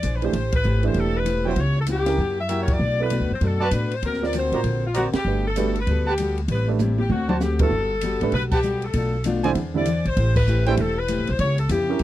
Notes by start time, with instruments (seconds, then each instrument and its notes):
Already playing: saxophone section D5
0.02 upright bass A#1, steel-string acoustic guitar E3 D4 G#4 C5, hi-hat pedal, ride
0.15 saxophone section B4
0.22 upright piano E3 A3 D4 G4, saxophone section C5, ride
0.33 upright bass A1, steel-string acoustic guitar A3 E4 G4 C5, kick, ride
0.52 saxophone section B4, kick, ride
0.63 upright bass G#1, steel-string acoustic guitar A3 E4 G4 C5, hi-hat pedal
0.83 upright piano E3 A3 D4 G4, ride
0.87 saxophone section C5
0.94 upright bass E1, steel-string acoustic guitar A3 E4 G4 C5, kick, ride
0.99 saxophone section A4
1.17 saxophone section B4
1.25 steel-string acoustic guitar A3 E4 G4 C5, hi-hat pedal, ride
1.45 upright piano F#3 B3 E4 F#4, trumpet section E4 B4 C#5 G5, saxophone section C5
1.56 upright bass C#2, steel-string acoustic guitar C#3 B3 E4 G4, kick, ride
1.60 saxophone section C#5
1.80 saxophone section A4
1.86 steel-string acoustic guitar C#3 B3 E4 G4, hi-hat pedal, ride
1.92 saxophone section G4
2.06 upright piano C#4 E4 G4 A#4, snare, ride
2.17 upright bass F#2, steel-string acoustic guitar F#3 A#3 E4 G4, kick
2.41 saxophone section E5
2.48 steel-string acoustic guitar F#3 A#3 E4 G4, trumpet section F#4 A#4 E5 G5, hi-hat pedal, ride
2.63 saxophone section C#5
2.68 kick, ride
2.72 saxophone section D5
2.79 upright bass B1, steel-string acoustic guitar B2 A3 D4 F#4
3.00 upright piano B3 E4 A4 D5, saxophone section B4
3.10 steel-string acoustic guitar B2 A3 D4 F#4, hi-hat pedal, ride
3.20 upright bass D2
3.31 upright bass F#2, saxophone section C5
3.41 upright bass F#2, steel-string acoustic guitar B2 A3 D4 F#4, saxophone section A4, kick, ride
3.61 trumpet section F#4 B4 D5 A5, saxophone section B4
3.71 upright bass A2, steel-string acoustic guitar B2 A3 D4 F#4, hi-hat pedal, ride
3.91 saxophone section C5, ride
4.02 upright bass D2, steel-string acoustic guitar D3 A#3 C4 F#4, saxophone section A#4, kick, ride
4.13 snare
4.21 upright piano C4 F4 A#4 D5, snare
4.26 saxophone section D5
4.33 steel-string acoustic guitar D3 A#3 C4 F#4, hi-hat pedal, ride
4.38 saxophone section C5
4.52 upright bass A2, upright piano C4 F4 A#4 C5, trumpet section F#4 C5 D5 A#5, ride
4.64 upright bass A#1, steel-string acoustic guitar D3 A#3 C4, kick, ride
4.68 steel-string acoustic guitar F#4
4.86 saxophone section F4
4.94 steel-string acoustic guitar D3 A#3 C4 F#4, trumpet section F#4 C5 D5 A#5, saxophone section F#4, hi-hat pedal, ride
5.13 saxophone section G4, muted upright bass stroke, snare, ride
5.25 upright bass G1, steel-string acoustic guitar G3 B3, upright piano A3 D4 G4 B4
5.29 steel-string acoustic guitar F#4 A4
5.47 saxophone section A4
5.56 steel-string acoustic guitar G3 B3 F#4 A4, upright piano A3 D4 G4 B4, hi-hat pedal, ride
5.75 ride
5.80 saxophone section B4
5.87 upright bass D2, steel-string acoustic guitar G3 B3 F#4 A4, kick, ride
6.06 trumpet section G4 B4 F#5 A5, saxophone section G4
6.18 steel-string acoustic guitar G3 B3 F#4 A4, hi-hat pedal, ride
6.38 ride
6.48 upright bass A1, steel-string acoustic guitar A2 G3 C4 E4, saxophone section B4, kick, ride
6.68 upright piano A3 D4 G4 B4
6.79 steel-string acoustic guitar A2 G3 C4 E4, hi-hat pedal, high tom
6.98 saxophone section G4, high tom
7.10 upright bass D2, steel-string acoustic guitar D3 A3 C4 F#4, saxophone section F#4, high tom
7.29 trumpet section F#4 C5 D5 A5, saxophone section F#4, mid tom
7.40 steel-string acoustic guitar D3 A3 C4 F#4, saxophone section G4, snare, hi-hat pedal
7.59 upright piano G2 F#3 B3 E4 A4, saxophone section A4, kick, ride
7.71 upright bass G1, steel-string acoustic guitar G3 B3 F#4 A4
8.01 steel-string acoustic guitar G3 B3 F#4 A4, hi-hat pedal, ride
8.21 upright bass G#1, upright piano A3 D4 G4 B4, ride
8.32 upright bass B1, steel-string acoustic guitar G3 B3 F#4, saxophone section B4, kick, ride
8.36 steel-string acoustic guitar A4
8.51 trumpet section G4 B4 F#5 A5, saxophone section G4, kick, crash
8.63 steel-string acoustic guitar G3 B3 F#4 A4, hi-hat pedal
8.82 saxophone section A4, ride
8.93 upright bass B1, steel-string acoustic guitar B2 A3 D4 F4, kick, ride
9.24 steel-string acoustic guitar B2 A3 D4 F4, hi-hat pedal, ride
9.44 upright piano D3 G3 C4 E4, trumpet section E4 C5 D5 G#5, ride
9.55 upright bass E2, steel-string acoustic guitar E3 D4 G#4 C5, kick, ride
9.74 upright piano D3 G3 C4 E4, saxophone section D5
9.85 steel-string acoustic guitar E3 D4 G#4 C5, hi-hat pedal, ride
10.05 upright bass A#1, saxophone section C5, ride
10.16 upright bass A1, steel-string acoustic guitar A3 E4 G4 C5, kick, ride
10.36 saxophone section B4, kick, crash
10.47 steel-string acoustic guitar A3 E4 G4 C5, hi-hat pedal
10.66 upright piano E3 A3 D4 G4, trumpet section E4 A4 C5 G5, saxophone section C5, ride
10.77 upright bass E1, steel-string acoustic guitar A3 E4 G4 C5, saxophone section A4, kick, ride
10.98 saxophone section B4
11.08 steel-string acoustic guitar A3 E4 G4 C5, hi-hat pedal, ride
11.19 upright bass A1
11.27 upright bass B1, saxophone section C5, ride
11.39 upright bass C#2, steel-string acoustic guitar C#3 B3 E4 G4, saxophone section C#5, kick, ride
11.58 saxophone section A4, ride
11.69 upright bass F2, steel-string acoustic guitar C#3 B3 E4 G4, saxophone section G4, hi-hat pedal, ride
11.89 upright piano C#4 E4 G4 A#4
11.99 upright bass F#2, kick, ride